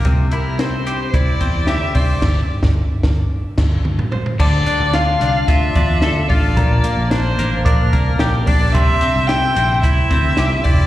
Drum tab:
CC |----------------|x---------x-----|x---------------|----------------|
HH |x-x-x-x-x-x-x-o-|----------------|--x-x-x-x-x-x-o-|x-x-x-x-x-x-x-o-|
SD |----o-------o---|o--o--o---o-----|----o-o-----o---|----o-------o---|
T2 |----------------|------------o---|----------------|----------------|
FT |----------------|-------------ooo|----------------|----------------|
BD |o-------o-o---o-|o--o--o---o-----|o-------o-o---o-|o-------o-o---o-|

CC |----------------|
HH |x-x-x-x-x-x-x-o-|
SD |----o-------o---|
T2 |----------------|
FT |----------------|
BD |o-------o-o---o-|